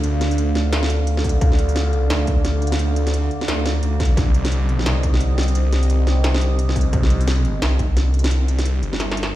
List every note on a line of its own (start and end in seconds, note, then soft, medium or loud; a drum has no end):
0.00 0.54 D2 loud
0.00 9.35 D3 medium
0.00 4.13 D4 medium
0.00 4.13 A4 medium
0.00 9.35 D5 medium
0.00 4.13 F5 medium
0.00 closed hi-hat medium
0.21 snare medium
0.21 closed hi-hat medium
0.31 open hi-hat medium
0.38 closed hi-hat medium
0.55 1.23 D2 loud
0.55 snare medium
0.55 closed hi-hat soft
0.73 snare loud
0.73 closed hi-hat medium
0.83 snare medium
0.90 closed hi-hat medium
1.07 closed hi-hat medium
1.17 snare medium
1.24 1.40 D2 loud
1.24 kick medium
1.24 open hi-hat medium
1.29 closed hi-hat medium
1.41 1.89 D2 loud
1.41 kick loud
1.41 closed hi-hat medium
1.52 snare medium
1.59 closed hi-hat medium
1.69 open hi-hat medium
1.76 snare medium
1.76 closed hi-hat medium
1.89 2.09 C#2 loud
1.89 closed hi-hat soft
2.10 2.78 D2 loud
2.10 snare loud
2.10 snare medium
2.10 closed hi-hat medium
2.27 kick medium
2.27 closed hi-hat medium
2.45 snare medium
2.45 closed hi-hat medium
2.62 closed hi-hat soft
2.67 closed hi-hat medium
2.72 snare medium
2.72 open hi-hat medium
2.79 3.30 D2 loud
2.79 closed hi-hat medium
2.96 closed hi-hat medium
3.07 snare medium
3.07 open hi-hat medium
3.14 closed hi-hat medium
3.31 closed hi-hat soft
3.41 snare medium
3.41 open hi-hat soft
3.48 3.82 D2 loud
3.48 snare loud
3.48 closed hi-hat medium
3.66 snare medium
3.66 closed hi-hat medium
3.83 4.16 D2 loud
3.83 closed hi-hat medium
4.00 kick medium
4.00 snare medium
4.00 open hi-hat medium
4.05 closed hi-hat medium
4.17 4.65 C2 loud
4.17 9.35 C4 medium
4.17 9.35 G4 medium
4.17 9.35 D#5 medium
4.17 kick loud
4.17 snare medium
4.17 closed hi-hat medium
4.34 closed hi-hat medium
4.45 snare medium
4.45 open hi-hat medium
4.52 closed hi-hat medium
4.65 4.85 B1 loud
4.65 closed hi-hat soft
4.79 snare medium
4.86 5.54 C2 loud
4.86 snare loud
4.86 closed hi-hat medium
5.03 kick medium
5.03 closed hi-hat medium
5.14 snare medium
5.21 closed hi-hat medium
5.38 snare medium
5.38 closed hi-hat soft
5.43 closed hi-hat medium
5.48 open hi-hat medium
5.55 6.06 C2 loud
5.55 closed hi-hat medium
5.72 snare medium
5.72 closed hi-hat medium
5.83 open hi-hat medium
5.90 closed hi-hat medium
6.07 6.75 C2 loud
6.07 snare medium
6.07 closed hi-hat soft
6.24 snare loud
6.24 closed hi-hat medium
6.34 snare medium
6.41 closed hi-hat medium
6.59 closed hi-hat medium
6.69 snare medium
6.76 6.92 C2 medium
6.76 kick medium
6.76 open hi-hat medium
6.81 closed hi-hat medium
6.93 7.61 C2 loud
6.93 kick loud
6.93 closed hi-hat medium
7.03 snare medium
7.10 closed hi-hat medium
7.21 open hi-hat medium
7.28 snare medium
7.28 closed hi-hat medium
7.45 closed hi-hat soft
7.62 8.30 C2 loud
7.62 snare loud
7.62 snare medium
7.62 closed hi-hat medium
7.79 kick medium
7.79 closed hi-hat medium
7.97 snare medium
7.97 closed hi-hat medium
8.14 closed hi-hat soft
8.19 closed hi-hat medium
8.24 snare medium
8.24 open hi-hat medium
8.31 8.82 C2 loud
8.31 closed hi-hat medium
8.48 closed hi-hat medium
8.59 snare medium
8.59 open hi-hat medium
8.65 closed hi-hat medium
8.83 9.33 G1 loud
8.83 closed hi-hat soft
8.93 snare medium
9.00 snare medium
9.00 closed hi-hat medium
9.12 snare medium
9.17 closed hi-hat medium
9.23 snare medium